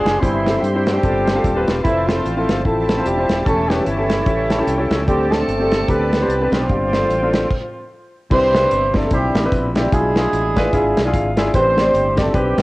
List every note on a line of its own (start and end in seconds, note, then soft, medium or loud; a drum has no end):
0.00 0.18 G#3 medium
0.00 0.20 C4 medium
0.00 0.15 D4 medium
0.00 0.20 D4 medium
0.00 0.15 F4 medium
0.00 0.16 G#4 medium
0.00 0.18 G#4 medium
0.00 0.21 G#4 medium
0.00 0.16 D5 medium
0.00 0.20 D5 medium
0.00 0.21 D5 medium
0.00 0.21 F5 medium
0.00 0.21 G#5 medium
0.00 1.00 C6 medium
0.00 1.01 C6 medium
0.05 0.20 F#1 medium
0.05 snare loud
0.05 closed hi-hat medium
0.19 0.57 G1 loud
0.19 0.83 G2 medium
0.19 0.61 E3 medium
0.19 0.60 G3 medium
0.19 0.39 C4 medium
0.19 0.85 C4 medium
0.19 0.61 E4 loud
0.19 0.40 E4 medium
0.19 1.83 G4 medium
0.19 0.40 G4 medium
0.19 1.83 C5 medium
0.19 3.43 C5 medium
0.19 1.03 E5 medium
0.19 1.83 G5 medium
0.19 kick loud
0.19 closed hi-hat medium
0.23 0.40 C5 medium
0.45 0.65 C4 medium
0.45 0.65 E4 medium
0.45 0.65 G4 medium
0.45 0.66 A4 medium
0.45 snare loud
0.45 closed hi-hat medium
0.60 0.97 G2 medium
0.60 0.83 G3 medium
0.60 0.83 G4 medium
0.60 closed hi-hat medium
0.74 0.96 C4 medium
0.74 0.97 E4 medium
0.74 0.97 G4 medium
0.74 0.97 C5 medium
0.84 1.62 G3 medium
0.84 1.63 C4 medium
0.84 1.63 D4 medium
0.84 1.62 G4 loud
0.84 snare loud
0.84 closed hi-hat medium
1.03 1.38 G1 medium
1.03 1.64 G2 medium
1.03 1.29 C4 medium
1.03 1.29 F4 medium
1.03 1.29 G4 medium
1.03 1.30 A4 medium
1.03 3.44 D5 medium
1.03 1.84 F5 medium
1.03 5.04 A5 medium
1.03 6.67 A5 medium
1.03 kick loud
1.03 closed hi-hat medium
1.27 snare loud
1.27 closed hi-hat medium
1.35 1.49 C4 medium
1.35 1.49 F4 medium
1.35 1.50 G4 medium
1.35 1.50 A4 medium
1.44 1.64 D#1 medium
1.44 kick medium
1.44 closed hi-hat medium
1.55 1.78 C4 medium
1.55 1.78 F4 medium
1.55 1.78 G4 medium
1.55 1.78 B4 medium
1.68 1.82 E1 medium
1.68 snare loud
1.68 closed hi-hat medium
1.83 2.19 F1 loud
1.83 2.06 E3 medium
1.83 3.45 F3 medium
1.83 2.07 A3 medium
1.83 2.02 C4 medium
1.83 2.07 C4 medium
1.83 2.06 E4 medium
1.83 2.02 E4 medium
1.83 2.02 F4 medium
1.83 2.03 A4 medium
1.83 3.45 C5 medium
1.83 5.05 E5 medium
1.83 kick loud
1.83 closed hi-hat medium
2.06 2.64 F3 medium
2.06 2.64 A3 medium
2.06 2.27 C4 medium
2.06 2.64 C4 medium
2.06 2.27 E4 medium
2.06 2.64 F4 medium
2.06 2.28 F4 medium
2.06 2.28 A4 medium
2.06 snare loud
2.06 closed hi-hat medium
2.25 2.45 A1 medium
2.25 closed hi-hat medium
2.36 2.58 C4 medium
2.36 2.59 E4 medium
2.36 2.59 F4 medium
2.36 2.59 A4 medium
2.49 2.63 G1 medium
2.49 snare loud
2.49 closed hi-hat medium
2.64 3.00 A1 medium
2.64 3.05 A3 medium
2.64 2.91 C4 medium
2.64 3.42 C4 medium
2.64 2.91 E4 medium
2.64 3.42 E4 medium
2.64 2.91 F4 medium
2.64 3.05 A4 loud
2.64 2.91 A4 medium
2.64 kick loud
2.64 closed hi-hat medium
2.89 snare loud
2.89 closed hi-hat medium
2.97 3.11 C4 medium
2.97 3.11 E4 medium
2.97 3.12 F4 medium
2.97 3.12 C5 medium
3.04 3.26 E1 medium
3.04 3.27 G3 medium
3.04 3.27 G4 medium
3.04 closed hi-hat medium
3.17 3.39 C4 medium
3.17 3.40 E4 medium
3.17 3.40 F4 medium
3.17 3.40 C5 medium
3.29 3.44 D#1 medium
3.29 3.45 G3 medium
3.29 3.45 G4 medium
3.29 snare loud
3.29 closed hi-hat medium
3.45 3.81 E1 medium
3.45 4.07 E3 medium
3.45 3.69 A3 loud
3.45 3.63 C#4 medium
3.45 3.86 C#4 medium
3.45 3.64 E4 medium
3.45 6.66 G4 medium
3.45 3.64 G4 medium
3.45 3.69 A4 loud
3.45 3.64 A4 medium
3.45 5.06 C#5 medium
3.45 7.46 G5 medium
3.45 kick loud
3.45 closed hi-hat medium
3.68 3.86 G3 medium
3.68 3.89 C#4 medium
3.68 3.89 E4 medium
3.68 3.86 G4 medium
3.68 3.89 G4 medium
3.68 3.90 B4 medium
3.68 snare medium
3.68 closed hi-hat medium
3.85 4.21 G1 medium
3.85 4.91 E3 medium
3.85 4.87 G3 medium
3.85 4.88 C#4 medium
3.85 4.91 E4 medium
3.85 closed hi-hat medium
3.97 4.20 C#4 medium
3.97 4.20 E4 medium
3.97 4.20 G4 medium
3.97 4.21 A4 medium
4.10 snare loud
4.10 closed hi-hat medium
4.26 4.61 A1 medium
4.26 4.52 C#4 medium
4.26 4.52 E4 medium
4.26 4.53 G4 medium
4.26 4.53 A4 medium
4.26 kick loud
4.26 closed hi-hat medium
4.50 4.67 A5 medium
4.50 snare loud
4.50 closed hi-hat medium
4.59 4.73 C#4 medium
4.59 4.73 E4 medium
4.59 4.73 G4 medium
4.59 4.74 A4 medium
4.67 4.88 C2 medium
4.67 5.05 G5 medium
4.67 closed hi-hat medium
4.78 5.01 C#4 medium
4.78 5.01 E4 medium
4.78 5.01 G4 medium
4.78 5.01 A4 medium
4.91 5.05 C#2 medium
4.91 snare loud
4.91 closed hi-hat medium
5.05 5.42 D2 loud
5.05 5.68 D3 medium
5.05 5.29 G3 medium
5.05 5.25 C4 medium
5.05 5.30 C4 medium
5.05 7.48 C4 medium
5.05 5.25 D4 medium
5.05 5.29 G4 loud
5.05 5.26 G4 medium
5.05 5.26 A4 medium
5.05 7.48 D5 medium
5.05 6.68 A5 medium
5.05 kick medium
5.05 closed hi-hat medium
5.31 5.88 A3 medium
5.31 5.50 C4 medium
5.31 6.09 C4 medium
5.31 5.51 D4 medium
5.31 5.51 G4 medium
5.31 5.88 A4 medium
5.31 5.51 A4 medium
5.31 snare loud
5.31 closed hi-hat medium
5.48 5.82 G1 medium
5.48 closed hi-hat medium
5.59 5.82 C4 medium
5.59 5.82 D4 medium
5.59 5.82 G4 medium
5.59 5.83 A4 medium
5.72 snare loud
5.72 closed hi-hat medium
5.87 6.23 D2 medium
5.87 6.53 B3 medium
5.87 6.14 C4 medium
5.87 6.14 D4 medium
5.87 6.14 G4 medium
5.87 6.66 G4 medium
5.87 6.15 A4 medium
5.87 6.53 B4 loud
5.87 kick loud
5.87 closed hi-hat medium
6.13 snare loud
6.13 closed hi-hat medium
6.20 6.34 C4 medium
6.20 6.35 D4 medium
6.20 6.35 G4 medium
6.20 6.35 C5 medium
6.28 6.49 C2 medium
6.28 closed hi-hat medium
6.40 6.63 C4 medium
6.40 6.63 D4 medium
6.40 6.63 G4 medium
6.40 6.64 B4 medium
6.52 6.67 B1 medium
6.52 7.87 C4 medium
6.52 7.87 F4 medium
6.52 7.87 C5 loud
6.52 snare loud
6.52 closed hi-hat medium
6.69 7.04 G1 loud
6.69 7.30 G2 medium
6.69 6.87 C4 medium
6.69 6.87 D4 medium
6.69 7.50 F4 medium
6.69 6.88 F4 medium
6.69 6.88 G4 medium
6.69 7.49 F5 medium
6.69 7.49 G5 medium
6.69 kick loud
6.69 closed hi-hat medium
6.93 7.12 C4 medium
6.93 7.13 D4 medium
6.93 7.13 F4 medium
6.93 7.13 A4 medium
6.93 snare medium
6.93 closed hi-hat medium
7.09 7.44 A1 medium
7.09 closed hi-hat medium
7.22 7.44 C4 medium
7.22 7.44 D4 medium
7.22 7.44 F4 medium
7.22 7.45 A4 medium
7.33 snare loud
7.33 closed hi-hat medium
7.50 kick medium
7.50 crash medium
8.30 8.65 C2 medium
8.30 8.91 C3 medium
8.30 8.48 C4 medium
8.30 8.92 C4 loud
8.30 8.49 D4 medium
8.30 8.49 E4 medium
8.30 9.08 E4 medium
8.30 9.08 G4 medium
8.30 8.49 B4 medium
8.30 8.92 C5 loud
8.30 kick loud
8.30 crash medium
8.54 8.82 C4 medium
8.54 8.83 D4 medium
8.54 8.83 E4 medium
8.54 8.83 B4 medium
8.54 snare loud
8.54 closed hi-hat medium
8.71 9.06 G1 medium
8.71 closed hi-hat medium
8.94 9.12 A3 medium
8.94 9.07 C4 medium
8.94 9.08 D4 medium
8.94 9.08 E4 medium
8.94 9.12 A4 loud
8.94 9.08 A4 medium
8.94 kick medium
8.94 snare loud
8.94 closed hi-hat medium
9.11 9.32 B1 medium
9.11 9.50 G3 medium
9.11 9.89 B3 medium
9.11 9.37 C4 medium
9.11 9.37 D4 medium
9.11 9.89 E4 medium
9.11 9.38 E4 medium
9.11 9.50 G4 medium
9.11 9.38 C5 medium
9.11 kick loud
9.11 closed hi-hat medium
9.35 9.49 A1 loud
9.35 snare loud
9.35 closed hi-hat medium
9.44 9.66 C4 medium
9.44 9.67 D4 medium
9.44 9.67 E4 medium
9.44 9.67 B4 medium
9.52 9.86 A#1 medium
9.52 kick loud
9.52 closed hi-hat medium
9.75 9.91 G3 medium
9.75 9.88 C4 medium
9.75 9.88 D4 medium
9.75 9.88 E4 medium
9.75 9.91 G4 medium
9.75 9.89 D5 medium
9.75 snare loud
9.75 closed hi-hat medium
9.92 10.27 B1 loud
9.92 10.53 B2 medium
9.92 11.14 G#3 medium
9.92 10.10 D4 medium
9.92 11.10 D4 medium
9.92 10.10 E4 medium
9.92 11.10 E4 medium
9.92 10.10 F4 medium
9.92 11.14 G#4 loud
9.92 10.11 G#4 medium
9.92 kick loud
9.92 closed hi-hat loud
10.16 10.44 D4 medium
10.16 10.44 E4 medium
10.16 10.44 F4 medium
10.16 10.45 G#4 medium
10.16 snare loud
10.16 closed hi-hat medium
10.33 10.67 A1 medium
10.33 closed hi-hat medium
10.56 10.69 D4 medium
10.56 10.69 E4 medium
10.56 10.69 F4 medium
10.56 10.69 B4 loud
10.56 kick medium
10.56 snare loud
10.56 closed hi-hat medium
10.73 10.93 G#1 medium
10.73 10.98 D4 medium
10.73 10.98 E4 medium
10.73 10.99 F4 medium
10.73 10.99 G#4 loud
10.73 kick loud
10.73 closed hi-hat medium
10.97 11.11 B1 medium
10.97 snare loud
10.97 closed hi-hat medium
11.05 11.28 D4 medium
11.05 11.28 E4 medium
11.05 11.28 F4 medium
11.05 11.29 G#4 medium
11.13 11.48 G#1 medium
11.13 11.51 F5 medium
11.13 kick loud
11.13 closed hi-hat medium
11.37 11.49 D4 medium
11.37 11.50 E4 medium
11.37 11.50 F4 medium
11.37 11.50 G#4 medium
11.37 snare loud
11.37 closed hi-hat medium
11.53 11.88 A1 loud
11.53 12.14 A2 medium
11.53 11.71 C4 medium
11.53 12.14 C4 loud
11.53 11.71 D4 medium
11.53 12.31 E4 medium
11.53 12.31 G4 medium
11.53 11.72 G4 medium
11.53 11.72 B4 medium
11.53 12.14 C5 loud
11.53 kick loud
11.53 closed hi-hat medium
11.76 12.05 C4 medium
11.76 12.05 D4 medium
11.76 12.05 G4 medium
11.76 12.06 D5 medium
11.76 snare loud
11.76 closed hi-hat medium
11.94 12.28 G1 medium
11.94 closed hi-hat medium
12.16 12.35 A3 medium
12.16 12.29 C4 medium
12.16 12.30 D4 medium
12.16 12.30 G4 medium
12.16 12.35 A4 medium
12.16 12.30 D5 medium
12.16 kick medium
12.16 snare loud
12.16 closed hi-hat medium
12.33 12.55 B1 medium
12.33 12.62 G3 medium
12.33 12.62 B3 medium
12.33 12.59 C4 medium
12.33 12.62 C4 medium
12.33 12.59 D4 medium
12.33 12.60 G4 medium
12.33 12.62 G4 loud
12.33 12.60 B4 medium
12.33 kick loud
12.33 closed hi-hat medium
12.58 12.62 A1 loud
12.58 snare loud
12.58 closed hi-hat medium